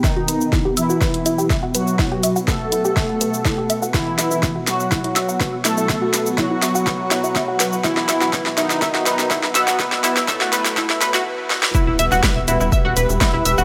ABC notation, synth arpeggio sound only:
X:1
M:4/4
L:1/16
Q:1/4=123
K:Em
V:1 name="Synth arpeggio sound"
e F B z E G e F B z E G e F B z | E G e F B z E G e F B z E G e F | B z E E e F B z E E e F B z E E | e F B z E E e F B z E E e F B z |
E E e F B z E E e F B z E E e F | B z E E e F B z E E B F z4 | E E e F B z E E e F B z E E e F |]